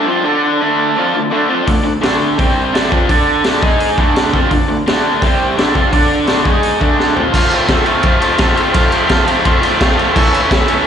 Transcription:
Already playing: transistor combo organ A4 D5 F#5
0.06 overdriven electric guitar F3 C4 F4
0.23 overdriven electric guitar D4 A4 D5, transistor combo organ A4 D5 F#5
0.57 overdriven electric guitar D3, transistor combo organ A4 D5 F#5
0.62 overdriven electric guitar A3 D4
0.95 overdriven electric guitar F3 C4 F4, transistor combo organ A4 D5 A5
1.14 overdriven electric guitar D3 A3
1.30 overdriven electric guitar D3 A3 D4, transistor combo organ A4 D5 F#5
1.49 overdriven electric guitar F3 C4 F4
1.66 overdriven electric guitar D3 A3, transistor combo organ A4 D5 F#5, kick, open hi-hat
1.83 overdriven electric guitar D3 A3
2.01 overdriven electric guitar D3 A3 D4, transistor combo organ A4 D5 F#5, snare, open hi-hat
2.36 overdriven electric guitar C3 G3 C4, transistor combo organ G4 C5 G5, kick, open hi-hat
2.73 overdriven electric guitar D3 A3 D4, transistor combo organ A4 D5 F#5, snare, open hi-hat
2.91 overdriven electric guitar F3 C4 F4, kick
3.08 overdriven electric guitar D4 A4 D5, transistor combo organ A4 D5 F#5, kick, open hi-hat
3.43 overdriven electric guitar D3 A3 D4, transistor combo organ A4 D5 A5, snare, open hi-hat
3.60 overdriven electric guitar G#3 D#4, transistor combo organ G#4 D#5 G#5, kick
3.64 overdriven electric guitar G#4
3.80 open hi-hat
3.95 overdriven electric guitar D3, transistor combo organ A4 D5 F#5, kick
3.99 overdriven electric guitar A3 D4
4.16 snare, open hi-hat
4.32 overdriven electric guitar F3 C4 F4, kick
4.51 overdriven electric guitar D3 A3, transistor combo organ A4 D5 F#5, kick, open hi-hat
4.68 overdriven electric guitar D3 A3
4.87 overdriven electric guitar D3 A3 D4, transistor combo organ A4 D5 F#5, snare, open hi-hat
5.19 overdriven electric guitar C3 G3, transistor combo organ G4 C5 G5, kick, open hi-hat
5.24 overdriven electric guitar C4
5.55 overdriven electric guitar D3, transistor combo organ A4 D5 F#5, snare, open hi-hat
5.59 overdriven electric guitar A3 D4
5.74 overdriven electric guitar F3 C4 F4, kick
5.92 overdriven electric guitar D4 A4 D5, transistor combo organ A4 D5 F#5, kick, open hi-hat
6.27 overdriven electric guitar D3 A3 D4, transistor combo organ A4 D5 F#5, snare, open hi-hat
6.43 overdriven electric guitar G#3 D#4, transistor combo organ G#4 D#5 G#5, kick
6.47 overdriven electric guitar G#4
6.63 open hi-hat
6.76 transistor combo organ A4 D5 F#5
6.81 overdriven electric guitar D3 A3 D4, kick
7.00 snare
7.15 overdriven electric guitar F3 C4 F4, floor tom
7.32 overdriven electric guitar F3 A3 C4 F4, transistor combo organ A4 C5 F5, kick, crash
7.51 overdriven electric guitar F3 A3 C4 F4, ride
7.67 overdriven electric guitar F3 A3 C4 F4, transistor combo organ A4 C5 E5, kick, snare, ride
7.85 overdriven electric guitar F3 A3 C4 F4, ride
8.02 overdriven electric guitar F3 A3, transistor combo organ A4 C5 F5, kick, ride
8.06 overdriven electric guitar C4 F4
8.21 overdriven electric guitar F3 A3 C4 F4, transistor combo organ A4 C5 G5, ride
8.38 overdriven electric guitar F3 A3 C4 F4, transistor combo organ A4 C5 E5, kick, snare, ride
8.55 overdriven electric guitar F3 A3 C4 F4, ride
8.72 overdriven electric guitar F3 A3 C4 F4, transistor combo organ A4 C5 F5, kick, ride
8.91 overdriven electric guitar F3 A3 C4 F4, ride
9.08 overdriven electric guitar F3 A3 C4 F4, transistor combo organ A4 C5 F5, kick, snare, ride
9.25 overdriven electric guitar F3 A3 C4 F4, ride
9.44 overdriven electric guitar F3 A3 C4 F4, transistor combo organ A4 C5 E5, kick, ride
9.61 overdriven electric guitar F3 A3 C4 F4, transistor combo organ A4 C5 F5, ride
9.79 overdriven electric guitar F3 A3 C4 F4, transistor combo organ A4 C5 F5, kick, snare, ride
9.97 overdriven electric guitar F3 A3 C4 F4, ride
10.14 overdriven electric guitar A2 E3 A3 C#4 E4, transistor combo organ A4 C#5 E5, kick, crash
10.32 overdriven electric guitar A2 E3 A3 C#4, ride
10.36 overdriven electric guitar E4
10.49 overdriven electric guitar A2 E3 A3 C#4 E4, transistor combo organ A4 C#5 E5, kick, snare, ride
10.67 overdriven electric guitar A2 E3 A3 C#4 E4, ride

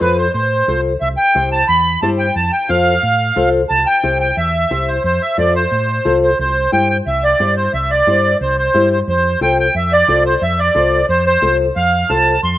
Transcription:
0.00 fingered electric bass F2, nylon-string guitar F4 A4 C5, accordion B4
0.18 accordion C5
0.33 fingered electric bass A2, accordion C5
0.68 fingered electric bass C2, nylon-string guitar F4 A4 C5
1.01 fingered electric bass C2, accordion E5
1.17 accordion G5
1.35 fingered electric bass C2, nylon-string guitar E4 G4 C5
1.52 accordion A5
1.68 fingered electric bass E2, accordion B5
2.02 fingered electric bass G2, nylon-string guitar E4 G4 C5, accordion A5
2.19 accordion G5
2.36 fingered electric bass F2, accordion A5
2.53 accordion G5
2.69 fingered electric bass F2, nylon-string guitar F4 A4 C5, accordion F5
3.03 fingered electric bass A2
3.36 fingered electric bass C2, nylon-string guitar F4 A4 C5
3.69 fingered electric bass C2, accordion A5
3.86 accordion G5
4.03 fingered electric bass C2, nylon-string guitar E4 G4 C5
4.21 accordion G5
4.37 fingered electric bass E2, accordion E5
4.71 fingered electric bass C2, nylon-string guitar E4 G4 C5
4.88 accordion C5
5.04 fingered electric bass F2, accordion C5
5.22 accordion E5
5.38 fingered electric bass F2, nylon-string guitar F4 A4 C5, accordion D5
5.55 accordion C5
5.72 fingered electric bass A2
6.05 fingered electric bass C2, nylon-string guitar F4 A4 C5
6.23 accordion C5
6.39 fingered electric bass C2, accordion C5
6.72 fingered electric bass G2, nylon-string guitar E4 G4 C5, accordion G5
6.90 accordion G5
7.06 fingered electric bass C2, accordion E5
7.24 accordion D5
7.39 fingered electric bass G2, nylon-string guitar E4 G4 C5
7.57 accordion C5
7.74 fingered electric bass C2, accordion E5
7.90 accordion D5
8.07 fingered electric bass G2, nylon-string guitar E4 G4 C5
8.41 fingered electric bass C2, accordion C5
8.58 accordion C5
8.74 fingered electric bass G2, nylon-string guitar E4 G4 C5
8.93 accordion C5
9.08 fingered electric bass F2, accordion C5
9.41 fingered electric bass C2, nylon-string guitar F4 A4 C5, accordion G5
9.60 accordion G5
9.75 fingered electric bass F2, accordion E5
9.93 accordion D5
10.08 fingered electric bass C2, nylon-string guitar F4 A4 C5
10.26 accordion C5
10.42 fingered electric bass F2, accordion E5
10.59 accordion D5
10.75 fingered electric bass C2, nylon-string guitar F4 A4 C5
11.09 fingered electric bass F2, accordion C5
11.26 accordion C5
11.42 fingered electric bass C2, nylon-string guitar F4 A4 C5
11.76 fingered electric bass F2, accordion F5
12.09 fingered electric bass C2, nylon-string guitar F4 A4 C5, accordion A5
12.43 fingered electric bass F2, accordion C6

